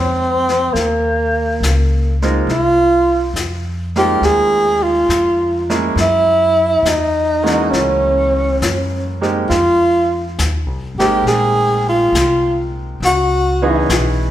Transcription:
Already playing: upright bass F2, grand piano G#3 A#3 C#4 D#4 C5, tenor saxophone C4
0.48 snare
0.73 upright bass D#2, tenor saxophone A#3, brush sweep, snare
1.60 upright bass C#2, snare, hi-hat pedal
2.22 grand piano G#3 A#3 C4 D#4 F4, snare
2.47 upright bass C2, brush sweep, snare
2.51 tenor saxophone F4
3.34 upright bass F2, snare, hi-hat pedal
3.95 grand piano G#3 A#3 C4 D#4 F4, tenor saxophone G4, snare
4.21 upright bass D#2, tenor saxophone G#4, brush sweep, snare
4.83 tenor saxophone F4
5.09 upright bass F2, snare, hi-hat pedal
5.70 grand piano G#3 A#3 C#4 E4 G#4, snare
5.96 upright bass F#2, brush sweep, snare
6.00 tenor saxophone E4
6.83 upright bass E2, tenor saxophone D#4, snare, hi-hat pedal
7.43 grand piano E3 G#3 A#3 C#4 F#4, snare
7.71 upright bass C#2, tenor saxophone C#4, brush sweep, snare
8.61 upright bass F#2, snare, hi-hat pedal
9.21 grand piano G#3 A#3 C4 D#4 G4, snare
9.49 upright bass F2, tenor saxophone F4, brush sweep, snare
10.39 upright bass D#2, snare, hi-hat pedal
10.66 upright bass C2
10.95 upright bass G#1
10.99 grand piano G#3 A#3 C4 D#4 G4, tenor saxophone G4, snare
11.23 upright bass A#1
11.27 tenor saxophone G#4, brush sweep, snare
11.89 tenor saxophone F4
12.12 upright bass C2, snare, hi-hat pedal
13.00 upright bass C#2, brush sweep, snare
13.05 tenor saxophone F#4
13.62 grand piano E3 B3 C#4 D#4 G#4
13.89 upright bass B1, snare, hi-hat pedal

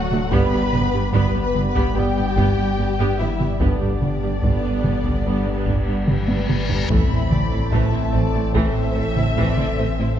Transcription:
Already playing: sub bass D1, analog synth pad F#3 A3 A4 D5, french horn section F#3, violin section F#4 F#5
0.11 cello section D2, viola section A3 F#4, taiko mid
0.30 sub bass G1, double bass section G1, cello section G2, analog synth pad G3 B3 G4 D5, trombone section G3 B3, french horn section B3, viola section B3 G4, violin section B4 B5, taiko
0.52 cello section G2, viola section B3 G4
0.72 double bass section G1, cello section G2, viola section B3 G4, taiko mid
0.93 cello section G2, viola section B3 G4
1.13 double bass section G1, cello section G2, french horn section B3, viola section B3 G4, violin section B4 B5, taiko
1.34 cello section G2, viola section B3 G4
1.41 french horn section B3, violin section B4 B5
1.54 double bass section G1, cello section G2, viola section B3 G4, taiko mid
1.68 french horn section B3, violin section B4 B5
1.75 cello section G2, viola section B3 G4, taiko
1.95 double bass section G1, cello section G2, french horn section G3, trombone section G3 B3, viola section B3 G4, violin section G4 G5
2.17 cello section G2, viola section B3 G4
2.37 double bass section G1, cello section G2, viola section B3 G4, taiko
2.58 cello section G2, viola section B3 G4
2.78 double bass section G1, cello section G2, viola section B3 G4
3.00 cello section G2, viola section B3 G4
3.19 double bass section G1, cello section G2, french horn section E3, viola section B3 G4, violin section E4 E5
3.40 cello section G2, viola section B3 G4, taiko mid
3.60 double bass section G1, sub bass G1, cello section G2, french horn section D3, analog synth pad G3 B3 G4 D5, trombone section G3 B3, viola section B3 G4, violin section D4 D5, taiko, reverse cymbal
3.81 cello section G2, viola section B3 G4
4.02 double bass section G1, cello section G2, viola section B3 G4, taiko mid
4.23 cello section G2, viola section B3 G4
4.42 double bass section G1, cello section G2, viola section B3, taiko
4.64 cello section G2
4.84 double bass section G1, cello section G2, taiko mid
5.04 cello section G2, taiko
5.25 double bass section G1, cello section G2, trombone section G3 B3, viola section B3
5.46 cello section G2
5.52 viola section B3
5.66 double bass section G1, cello section G2, taiko
5.80 viola section B3
5.87 cello section G2
6.08 double bass section G1, cello section G2, viola section G3, violin section B4, taiko mid
6.28 cello section G2, taiko high
6.49 double bass section G1, cello section G2, taiko mid
6.69 cello section G2, taiko low
6.89 double bass section A1, sub bass A1, cello section A2, trombone section A2 A3, viola section E3 A3, analog synth pad E3 C4 A4 C5, french horn section C4 A4, violin section E5 B5, taiko, sub drop
7.11 cello section A2, viola section C4 E4
7.31 double bass section A1, cello section A2, viola section A3 C4, violin section D5, taiko mid
7.52 cello section A2, viola section C4 E4
7.72 double bass section A1, cello section A2, viola section E3 A3, violin section E5 A5, taiko
7.93 cello section A2, viola section C4 E4
8.13 double bass section A1, cello section A2, viola section A3 C4, violin section D5
8.34 cello section A2, viola section C4 E4
8.53 double bass section A1, cello section A2, viola section E3 A3, violin section C5 E5, taiko
8.95 double bass section A1, cello section A2, viola section A3 C4, violin section A4
9.17 cello section A2, viola section C4 E4, taiko mid
9.37 double bass section A1, cello section A2, viola section E3 A3, violin section D5, taiko
9.58 cello section A2, viola section C4 E4, taiko mid
9.77 double bass section A1, cello section A2, viola section A3 C4, violin section C5
9.98 cello section A2, viola section C4 E4

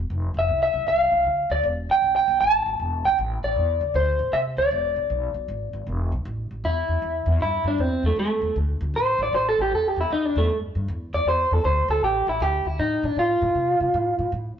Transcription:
0.10 upright bass F1
0.34 upright bass F1
0.39 clean electric guitar E5
0.48 upright bass C2
0.63 clean electric guitar E5
0.74 upright bass C2
0.87 upright bass C2, clean electric guitar F5
1.12 upright bass C2
1.25 upright bass D2
1.50 upright bass D2, clean electric guitar D5
1.63 upright bass E1
1.89 upright bass B1, clean electric guitar G5
2.02 upright bass B1
2.16 clean electric guitar G5
2.28 upright bass B1
2.41 upright bass G#1, clean electric guitar A5
2.66 upright bass G#1
2.80 upright bass E1
3.05 upright bass B1, clean electric guitar G5
3.19 upright bass A1
3.43 upright bass A1, clean electric guitar D5
3.56 upright bass E2
3.81 upright bass C#2
3.94 upright bass D2, clean electric guitar C5
4.19 upright bass A2
4.32 upright bass C3, clean electric guitar E5
4.57 upright bass D2, clean electric guitar D5
4.71 upright bass E1
4.96 upright bass B1
5.10 upright bass B1
5.34 upright bass B1
5.48 upright bass G#1
5.73 upright bass G#1
5.87 upright bass E1
6.12 upright bass B1
6.25 upright bass A1
6.51 upright bass A1
6.64 upright bass E2, clean electric guitar E4
6.88 upright bass E2
7.02 upright bass E2
7.26 upright bass E2
7.40 upright bass G2, clean electric guitar E4
7.64 upright bass G2, clean electric guitar D4
7.78 upright bass E2, clean electric guitar C4
8.03 upright bass E2, clean electric guitar A3
8.16 upright bass E2, clean electric guitar A3
8.42 upright bass E2
8.56 upright bass D2
8.81 upright bass D2
8.94 upright bass A1, clean electric guitar C5
9.19 upright bass A1
9.23 clean electric guitar D5
9.33 upright bass A1, clean electric guitar C5
9.49 clean electric guitar A4
9.58 upright bass A1, clean electric guitar G4
9.72 upright bass E2, clean electric guitar A4
9.88 clean electric guitar G4
9.96 upright bass E2
10.01 clean electric guitar E4
10.10 upright bass E2, clean electric guitar D#4
10.25 clean electric guitar D4
10.36 upright bass E2, clean electric guitar A3
10.49 upright bass G2
10.75 upright bass G2
10.88 upright bass E2
11.13 upright bass E2, clean electric guitar D5
11.25 upright bass E2, clean electric guitar C5
11.51 upright bass E2, clean electric guitar A4
11.64 upright bass D2, clean electric guitar C5
11.88 upright bass D2, clean electric guitar A4
12.01 upright bass A1, clean electric guitar G4
12.27 upright bass A1, clean electric guitar E4
12.40 upright bass D2, clean electric guitar G4
12.65 upright bass D2, clean electric guitar E4
12.79 upright bass A2, clean electric guitar D#4
13.03 upright bass A2, clean electric guitar D4
13.16 upright bass A2, clean electric guitar F4
13.42 upright bass A2
13.55 upright bass C3
13.80 upright bass C3
13.94 upright bass A2
14.19 upright bass A2
14.32 upright bass A2

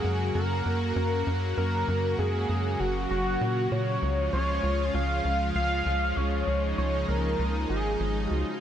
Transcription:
Already playing: analog synth pad C#3 F#3 A#3 F#4, analog synth lead G#4
0.04 analog synth bass F#2
0.35 analog synth bass F#2, analog synth lead A#4
0.66 analog synth bass F#2
0.96 analog synth bass F#2, analog synth lead A#4
1.27 analog synth bass F#2
1.57 analog synth bass F#2, analog synth lead A#4
1.88 analog synth bass F#2
2.19 analog synth bass F#2, analog synth lead G#4
2.49 analog synth bass F#2
2.80 analog synth bass F#1, analog synth lead F#4
3.10 analog synth bass F#1, analog synth lead F#4
3.41 analog synth bass A#2
3.72 analog synth bass A#2, analog synth lead C#5
4.02 analog synth bass C#2, analog synth pad F3 G#3 F4
4.33 analog synth bass C#2, analog synth lead C#5
4.63 analog synth bass C#2
4.94 analog synth bass C#2, analog synth lead F5
5.25 analog synth bass C#2
5.55 analog synth bass C#2, analog synth lead F5
5.86 analog synth bass C#2
6.17 analog synth bass C#2, analog synth lead C#5
6.47 analog synth bass C#2, analog synth pad D#4
6.78 analog synth bass C#2, analog synth lead C#5
7.08 analog synth bass C#2, analog synth lead A#4
7.39 analog synth bass C#2
7.70 analog synth bass G#1, analog synth lead G#4
8.00 analog synth bass G#1
8.31 analog synth bass C#2, analog synth lead F#4

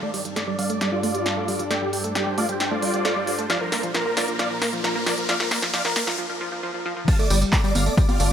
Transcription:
Already playing: analog synth pad G2 G3 D4 A4 D5, riser
0.03 synth arpeggio sound A3, supersaw synth D5
0.14 synth arpeggio sound G3, supersaw synth D5, open hi-hat
0.25 synth arpeggio sound G3, closed hi-hat
0.36 synth arpeggio sound A3, supersaw synth D5, snare, closed hi-hat
0.47 synth arpeggio sound G3, supersaw synth D5
0.59 synth arpeggio sound G3, supersaw synth D5 F5, open hi-hat
0.70 synth arpeggio sound A3, supersaw synth D5, closed hi-hat
0.81 synth arpeggio sound G3, supersaw synth D5, snare, closed hi-hat
0.92 synth arpeggio sound G3, supersaw synth F4 D5
1.03 synth arpeggio sound A3, open hi-hat
1.15 synth arpeggio sound G3, closed hi-hat
1.26 synth arpeggio sound G3, snare, closed hi-hat
1.37 synth arpeggio sound A3
1.48 synth arpeggio sound G3, open hi-hat
1.59 synth arpeggio sound G3, closed hi-hat
1.71 synth arpeggio sound A3, analog synth pad C5, supersaw synth D5 G5, snare, closed hi-hat
1.82 synth arpeggio sound G3, supersaw synth G4
1.93 synth arpeggio sound G3, supersaw synth G4, open hi-hat
2.04 synth arpeggio sound A3, closed hi-hat
2.15 synth arpeggio sound G3, supersaw synth G4, snare, closed hi-hat
2.27 synth arpeggio sound G3, supersaw synth G4
2.38 synth arpeggio sound A3, supersaw synth F4 D5, open hi-hat
2.49 synth arpeggio sound G3, supersaw synth G4, closed hi-hat
2.60 synth arpeggio sound G3, supersaw synth G4, snare, closed hi-hat
2.71 synth arpeggio sound A3, supersaw synth F4 D5
2.82 synth arpeggio sound G3, open hi-hat
2.94 synth arpeggio sound G3, closed hi-hat
3.05 synth arpeggio sound A3, snare, closed hi-hat
3.16 synth arpeggio sound G3
3.27 synth arpeggio sound G3, open hi-hat
3.39 synth arpeggio sound A3, closed hi-hat
3.50 analog synth pad A#2 A#3 F4, synth arpeggio sound F3, supersaw synth D5 F5, snare, closed hi-hat
3.61 synth arpeggio sound F3, supersaw synth A#4
3.72 synth arpeggio sound A#3, supersaw synth A#4, snare, open hi-hat
3.83 synth arpeggio sound F3, closed hi-hat
3.94 synth arpeggio sound F3, supersaw synth A#4, snare, closed hi-hat
4.06 synth arpeggio sound A#3, supersaw synth A#4
4.17 synth arpeggio sound F3, supersaw synth A#4 D5, snare, open hi-hat
4.28 synth arpeggio sound F3, supersaw synth A#4, closed hi-hat
4.39 synth arpeggio sound F3, supersaw synth D5 F5, snare, closed hi-hat
4.50 synth arpeggio sound F3, supersaw synth A#4
4.61 synth arpeggio sound A#3, supersaw synth A#4, snare, open hi-hat
4.73 synth arpeggio sound F3, closed hi-hat
4.84 synth arpeggio sound F3, supersaw synth A#4, snare, closed hi-hat
4.95 synth arpeggio sound A#3, supersaw synth A#4
5.06 synth arpeggio sound F3, supersaw synth A#4 D5, snare, open hi-hat
5.17 synth arpeggio sound F3, supersaw synth A#4, closed hi-hat
5.29 synth arpeggio sound F3, supersaw synth D5 F5, snare, closed hi-hat
5.40 synth arpeggio sound F3, supersaw synth A#4, snare
5.51 synth arpeggio sound A#3, supersaw synth A#4, snare, open hi-hat
5.62 synth arpeggio sound F3, snare, closed hi-hat
5.74 synth arpeggio sound F3, supersaw synth D5 F5, snare, closed hi-hat
5.85 synth arpeggio sound F3, supersaw synth A#4, snare
5.96 synth arpeggio sound A#3, supersaw synth A#4, snare, open hi-hat
6.07 synth arpeggio sound F3, snare, closed hi-hat
6.18 synth arpeggio sound F3
6.30 synth arpeggio sound F3
6.41 synth arpeggio sound F3
6.52 synth arpeggio sound F3
6.63 synth arpeggio sound F3
6.74 synth arpeggio sound F3
6.85 synth arpeggio sound F3
6.97 synth arpeggio sound F3
7.08 synth arpeggio sound G3, supersaw synth F5 A5, kick, closed hi-hat, tambourine, crash
7.19 synth arpeggio sound A3, supersaw synth D5, closed hi-hat, tambourine
7.30 analog synth bass G1, synth arpeggio sound G3, supersaw synth D5, open hi-hat, tambourine
7.42 synth arpeggio sound G3, closed hi-hat, tambourine
7.53 synth arpeggio sound A3, supersaw synth D5, kick, clap, closed hi-hat, tambourine
7.64 synth arpeggio sound G3, supersaw synth D5, closed hi-hat, tambourine
7.75 analog synth bass G1, synth arpeggio sound G3, supersaw synth D5 F5, open hi-hat, tambourine, high conga
7.86 synth arpeggio sound A3, supersaw synth D5, closed hi-hat, tambourine
7.97 synth arpeggio sound G3, supersaw synth D5, kick, closed hi-hat, tambourine
8.09 synth arpeggio sound G3, supersaw synth F4 D5, closed hi-hat, tambourine, high conga
8.20 analog synth bass G1, synth arpeggio sound A3, open hi-hat, tambourine

